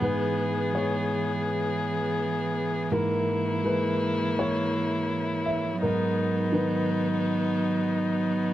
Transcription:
Already playing: B3
0.01 G#2 E3 G#4 B4
0.73 G#3 C#5
2.91 G#2 A#3 E4 A#4
3.64 G#3 B4
4.39 C#5
5.46 E5
5.81 G#2 F#3 B3 D#4 A#4
6.52 D#3 B4

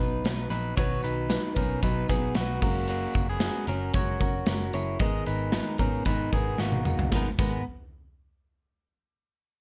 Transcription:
Already playing: D#4 B4
0.00 B1 F#3 B3 D#4
0.24 B1 F#3 B3 D#4 B4, snare, closed hi-hat, tambourine
0.50 A#1 D#4 B4, closed hi-hat, tambourine
0.76 B1 B2 D#3 F#3 B3 D#4 F#4 B4 C#5, kick, closed hi-hat, tambourine
1.03 B1 D#4 B4, closed hi-hat, tambourine
1.28 F#3 B3 D#4 B4, snare, closed hi-hat, tambourine
1.55 B1 F#3 B3 C#4 D#4 A#4 B4, kick, closed hi-hat, tambourine
1.82 B1 F#3 B3 D#4 B4, kick, closed hi-hat, tambourine
2.08 B1 B3 D#4 G#4 B4, kick, snare, closed hi-hat, tambourine
2.12 F#3 B3
2.35 B1 F#3 B3 D#4 F#4, snare, closed hi-hat, tambourine
2.40 B4
2.62 F#1 F#3 G#3 A#3 C#4 F#4 A#4, kick, tambourine, crash
2.88 A#3 F#4, closed hi-hat
3.14 F#1, kick, closed hi-hat, tambourine
3.29 B3 G#4
3.40 G#3 C#4 F#4, snare, closed hi-hat, tambourine
3.44 A#4
3.67 F#1 C#4 F#4 A#4, closed hi-hat, tambourine
3.71 C#4
3.94 F#1 G#3 C#4 F#4 A#4 C#5, kick, closed hi-hat, tambourine
4.19 F#1 C#4 F#4 A#4, kick, closed hi-hat, tambourine
4.46 F#1 G#3 C#4 F#4 A#4, snare, closed hi-hat, tambourine
4.73 F#1 E4 C#5, closed hi-hat, tambourine
4.99 G#1 G#2 D#3 G#3 B3 D#4 G#4 A#4 D#5, kick, closed hi-hat, tambourine
5.26 G#1 D#4 B4, closed hi-hat, tambourine
5.52 G#3 B3 D#4 A#4, snare, closed hi-hat, tambourine
5.78 G#1 G#3 B3 C#4 D#4 A#4, kick, closed hi-hat
6.05 G#1 G#3 B3 D#4 B4, kick, closed hi-hat, tambourine
6.09 A#4
6.33 G#1 G#3 B3 D#4 G#4 A#4, kick, closed hi-hat, tambourine
6.58 G#1 G#3 A#3 B3 D#4 F#4 A#4, snare, tambourine
6.72 high tom
6.85 F#1 A#3 F#4, mid tom, tambourine
6.99 floor tom
7.12 G#1 G#2 D#3 G#3 B3 D#4 A#4, kick, snare, tambourine
7.38 G#1 G#2 D#3 G#3 B3 D#4 A#4, kick, crash, tambourine

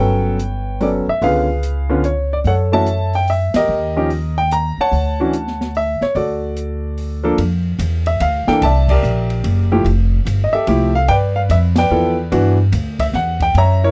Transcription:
Already playing: F#3 B3 C#4 A4 B4 C#5 G5
0.00 G1
0.39 closed hi-hat
0.80 F#3 B3 C#4 A4 D5, open hi-hat
1.07 E5, muted upright bass stroke
1.22 C#2 D3 B3 C#4 F4 G#4 B4 F5, open hi-hat
1.63 closed hi-hat
1.89 D3 B3 C#4 F4
2.04 C#5, closed hi-hat
2.33 D5
2.44 F#2 A4 C#5 F#5, open hi-hat
2.72 E3 A3 C#4 F#4 C#5 E5 A5
2.86 closed hi-hat
3.13 G5, open hi-hat
3.28 E5, open hi-hat
3.54 E2 G4 A#4 D#5, snare, ride
3.68 D#2
3.97 F3 C#4 D#4 G4
4.10 open hi-hat
4.38 G5
4.51 A#5, closed hi-hat
4.78 C#5 F#5 A5, muted upright bass stroke
4.92 D2, open hi-hat
5.20 E3 C#4 D4 F#4
5.33 closed hi-hat
5.47 snare
5.61 snare
5.75 E5, open hi-hat
6.01 C#5, muted upright bass stroke, snare
6.15 D2 F#4 A4 D5, open hi-hat
6.57 closed hi-hat
6.98 open hi-hat
7.24 F3 A#3 D4 A4
7.38 F2, ride
7.79 E2, hi-hat pedal, ride
8.06 E5, ride
8.20 D2 F5, ride
8.47 E3 A#3 D4 A4 G5, muted upright bass stroke, snare
8.62 C2 D5 E5 A5, ride
8.88 G4 A#4 D5, kick, crash
9.03 A#1, hi-hat pedal
9.30 ride
9.44 F#1, ride
9.72 F3 A3 E4 G4
9.84 F1, ride
10.25 G1, hi-hat pedal, ride
10.44 D#5
10.52 G4 A4 E5, muted upright bass stroke
10.67 C2 F3 A3 E4 G4, ride
10.95 F5
11.08 G2 B4 D5 G5, ride
11.36 F5
11.49 F2 E5, hi-hat pedal, ride
11.76 B4 D5 G5, snare, ride
11.90 E2 F3 B3 E4 A4
12.32 G2 E3 B3 D4 F#4, ride
12.72 D2, hi-hat pedal, ride
12.99 E5, kick, ride
13.13 E2 F#5, snare
13.40 G5, kick, ride
13.54 F#2 C#5 E5 A#5, ride
13.84 E4 A#4 C#5

